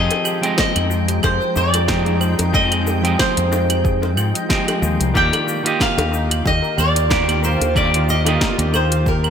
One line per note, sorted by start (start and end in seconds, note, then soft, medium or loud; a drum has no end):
0.00 0.39 F3 medium
0.00 5.11 F3 medium
0.00 5.11 G#3 medium
0.00 0.39 C4 medium
0.00 5.11 D#4 medium
0.00 0.39 G4 medium
0.00 0.39 G#4 medium
0.00 0.40 D#5 medium
0.00 0.55 D#5 loud
0.00 9.30 G5 medium
0.10 0.24 F4 medium
0.10 closed hi-hat soft
0.10 high bongo medium
0.10 shaker soft
0.25 0.42 G4 medium
0.25 claves medium
0.25 shaker medium
0.41 1.84 F3 medium
0.41 1.86 G#3 medium
0.41 1.85 C4 medium
0.41 0.56 G#4 medium
0.41 1.85 G5 medium
0.41 closed hi-hat soft
0.41 shaker soft
0.46 1.86 D#5 medium
0.57 0.67 C5 medium
0.57 1.24 D#5 loud
0.57 kick loud
0.57 snare loud
0.57 high bongo medium
0.57 shaker soft
0.75 1.19 F2 medium
0.75 0.90 D#4 medium
0.75 closed hi-hat soft
0.75 claves medium
0.75 shaker soft
0.90 1.00 F4 loud
0.90 shaker medium
1.08 1.22 G4 medium
1.08 closed hi-hat medium
1.08 shaker soft
1.23 1.38 F2 medium
1.23 1.39 G#4 medium
1.23 1.57 C5 loud
1.23 kick loud
1.23 high bongo medium
1.23 claves medium
1.23 shaker soft
1.41 1.54 C5 medium
1.41 shaker soft
1.56 2.34 F2 medium
1.56 1.72 D#4 loud
1.56 2.18 D5 loud
1.56 shaker medium
1.73 1.88 F4 medium
1.73 closed hi-hat medium
1.73 high bongo medium
1.73 claves medium
1.73 shaker soft
1.87 2.50 F3 medium
1.87 2.51 G#3 medium
1.87 2.50 C4 medium
1.87 2.51 D#4 medium
1.87 2.05 G4 medium
1.87 2.50 G5 medium
1.87 kick loud
1.87 snare loud
1.87 shaker soft
2.06 2.20 G#4 medium
2.06 closed hi-hat soft
2.06 shaker soft
2.21 2.31 C5 medium
2.21 claves medium
2.21 shaker medium
2.39 3.15 F2 medium
2.39 2.52 D#4 medium
2.39 closed hi-hat medium
2.39 high bongo medium
2.39 shaker soft
2.52 2.99 F3 medium
2.52 3.00 G#3 medium
2.52 3.00 C4 medium
2.52 2.70 D#4 medium
2.52 3.19 D#5 loud
2.52 3.01 D#5 loud
2.52 3.00 G5 medium
2.52 kick loud
2.52 shaker soft
2.71 2.85 F4 medium
2.71 closed hi-hat soft
2.71 claves medium
2.71 shaker soft
2.86 3.03 G4 medium
2.86 high bongo medium
2.86 shaker medium
3.02 4.45 F3 medium
3.02 4.47 G#3 medium
3.02 4.46 C4 medium
3.02 3.17 G#4 medium
3.02 4.46 G5 medium
3.02 closed hi-hat soft
3.02 shaker soft
3.07 4.47 D#5 medium
3.19 3.29 C5 medium
3.19 4.46 C5 loud
3.19 kick loud
3.19 snare loud
3.19 claves medium
3.19 shaker soft
3.37 4.17 F2 medium
3.37 3.51 D#4 medium
3.37 closed hi-hat soft
3.37 shaker soft
3.52 3.61 F4 loud
3.52 high bongo medium
3.52 shaker medium
3.70 3.83 G4 medium
3.70 closed hi-hat medium
3.70 claves medium
3.70 shaker soft
3.84 4.00 G#4 medium
3.84 kick loud
3.84 shaker soft
4.02 4.16 C5 medium
4.02 high bongo medium
4.02 shaker soft
4.17 4.32 G#2 medium
4.17 4.33 F4 medium
4.17 claves medium
4.17 shaker medium
4.34 4.43 D#5 medium
4.34 closed hi-hat medium
4.34 shaker soft
4.49 5.11 F3 medium
4.49 5.12 G#3 medium
4.49 5.11 C4 medium
4.49 4.66 G4 medium
4.49 5.12 D#5 medium
4.49 5.12 G5 medium
4.49 kick loud
4.49 snare loud
4.49 shaker soft
4.67 4.81 G4 medium
4.67 closed hi-hat soft
4.67 high bongo medium
4.67 claves medium
4.67 shaker soft
4.82 4.97 D#2 medium
4.82 4.99 F4 medium
4.82 shaker medium
5.00 5.12 C2 loud
5.00 5.13 D#4 medium
5.00 closed hi-hat soft
5.00 shaker soft
5.14 5.30 D#2 loud
5.14 5.61 D#3 medium
5.14 9.30 D#3 medium
5.14 5.61 A#3 medium
5.14 5.31 D4 medium
5.14 5.61 F4 medium
5.14 9.30 F4 medium
5.14 5.61 G4 medium
5.14 5.62 D5 loud
5.14 9.30 F5 medium
5.14 5.82 G5 loud
5.14 kick loud
5.14 shaker soft
5.32 5.46 D#4 medium
5.32 closed hi-hat soft
5.32 high bongo medium
5.32 claves medium
5.32 shaker soft
5.47 5.64 F4 medium
5.47 shaker medium
5.63 7.06 D#3 medium
5.63 7.06 A#3 medium
5.63 7.07 F4 medium
5.63 5.78 G4 medium
5.63 7.08 G4 medium
5.63 closed hi-hat medium
5.63 shaker soft
5.67 7.08 D#5 medium
5.80 5.90 A#4 medium
5.80 6.47 F5 loud
5.80 kick loud
5.80 snare medium
5.80 claves medium
5.80 shaker soft
5.97 6.41 D#2 medium
5.97 6.12 D4 medium
5.97 closed hi-hat soft
5.97 high bongo medium
5.97 shaker soft
6.12 6.22 D#4 loud
6.12 shaker medium
6.30 6.43 F4 medium
6.30 closed hi-hat medium
6.30 claves medium
6.30 shaker soft
6.45 6.60 D#2 medium
6.45 6.61 G4 medium
6.45 6.77 D#5 loud
6.45 kick loud
6.45 high bongo medium
6.45 shaker soft
6.62 6.76 A#4 medium
6.62 shaker soft
6.77 7.56 D#2 medium
6.77 6.94 G4 medium
6.77 7.44 D5 loud
6.77 claves medium
6.77 shaker medium
6.95 7.09 D#4 medium
6.95 closed hi-hat medium
6.95 shaker soft
7.10 7.72 D#3 medium
7.10 7.72 A#3 medium
7.10 7.27 F4 medium
7.10 7.72 F4 medium
7.10 7.72 G4 medium
7.10 7.73 D5 medium
7.10 kick loud
7.10 snare loud
7.10 high bongo medium
7.10 shaker soft
7.28 7.42 G4 medium
7.28 closed hi-hat soft
7.28 claves medium
7.28 shaker soft
7.43 7.52 A#4 loud
7.43 7.77 C5 medium
7.43 shaker medium
7.61 8.37 D#2 medium
7.61 7.74 D4 medium
7.61 closed hi-hat medium
7.61 high bongo soft
7.61 shaker soft
7.75 8.21 D#3 medium
7.75 8.22 A#3 medium
7.75 7.92 D4 medium
7.75 8.22 F4 medium
7.75 8.22 G4 medium
7.75 8.23 D5 loud
7.75 8.10 D5 loud
7.75 kick loud
7.75 claves medium
7.75 shaker soft
7.93 8.07 D#4 medium
7.93 closed hi-hat soft
7.93 shaker soft
8.08 8.25 F4 medium
8.08 8.75 D#5 loud
8.08 shaker medium
8.24 9.30 D#3 medium
8.24 9.30 A#3 medium
8.24 9.30 F4 medium
8.24 8.39 G4 medium
8.24 9.30 G4 medium
8.24 closed hi-hat medium
8.24 high bongo medium
8.24 claves medium
8.24 shaker soft
8.29 9.30 D#5 medium
8.40 8.50 A#4 medium
8.40 kick loud
8.40 snare loud
8.40 shaker soft
8.58 9.30 D#2 medium
8.58 8.73 D4 medium
8.58 closed hi-hat soft
8.58 shaker soft
8.73 8.83 D#4 loud
8.73 9.08 C5 medium
8.73 high bongo medium
8.73 claves medium
8.73 shaker medium
8.91 9.04 F4 medium
8.91 closed hi-hat medium
8.91 shaker soft
9.06 9.22 G4 medium
9.06 9.30 A#4 medium
9.06 kick medium
9.06 shaker soft
9.23 9.30 A#4 medium
9.23 claves medium
9.23 shaker soft